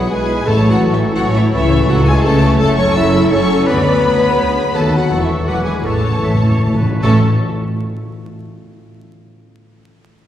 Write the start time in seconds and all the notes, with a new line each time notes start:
Already playing: B2 E3 F#3 G#3 B3 E4 F#4 G#4 E5 F#5 B5
0.02 G#5
0.10 B1 B2 E3 G#3 G#4 B4 G#5 B5
0.20 G#4
0.29 B3
0.38 G#3
0.46 A1 A2 E3 A3 A4 C#5 A5 C#6
0.56 E3
0.64 C#4
0.69 F#3 F#4 F#5
0.74 E4
0.82 A1 A2 A4
0.93 E3 E4 E5
1.00 E5
1.09 A5
1.17 A1 A2 F#3 F#4 C#5 F#5
1.27 A4
1.35 E3 C#4 E4 E5
1.45 E3
1.52 C#2 C#3 E3 E4 A4 C#5 E5 C#6
1.63 A3
1.72 C#4
1.88 C#2 C#3 F#3 F#4 A4 F#5
1.99 C#5
2.05 G#3 G#4 E5 G#5
2.18 A5
2.23 C#2 C#3 E3 A3 A4 C#5 A5 C#6
2.35 A4
2.44 C#4
2.53 A3
2.59 F#1 F#2 F#3 A4 A5 C#6
2.63 A3
2.70 C#3
2.77 C#4 C#5 C#6
2.88 F#4
2.95 F#1 F#2 F#3 E4 A4 E5 C#6 E6
3.15 F#5
3.23 A5
3.30 F#1 F#2 F#3 C#4 A4 C#5 C#6
3.42 A4
3.51 C#4
3.59 C#3
3.66 D2 D3 F#3 B3 B4 D5 B5
3.77 D4
3.86 B3
3.95 F#4
4.03 D2 B4
4.12 F#4
4.38 D2 G#4
4.47 F#4
4.56 B3
4.73 D#2 D#3 F#3 A3 F#4 A4 B4 A5 B5
4.83 A3
4.92 B3 F#4
4.97 F#3 F#4 F#5
5.02 F#4
5.09 E1 E2 E3 A4 C#6
5.20 E3 C#4 E4 E5
5.29 E4
5.37 A4
5.46 E1 E2 E3 F#3 F#4 B4 F#5 D6
5.56 B3
5.64 G#3 D4 G#4 G#5
5.75 E4
5.84 A1 A2 E3 A3 A4 C#5 A5 C#6
5.94 A2 E3
6.02 A2 C#4
6.10 A2
6.15 A2 E4
6.24 A1 A2 A4 E5
6.34 A2
6.42 A2 E5
6.50 A2 C#5
6.54 A2 A5
6.62 A1 A2 C#5
6.74 A2 A4 B4
6.83 A2 C#4
6.91 A2 E3
7.00 A1 A2 A3 C#4 A4 C#5 A5 C#6
7.04 E3 C#4 E4 A4 E5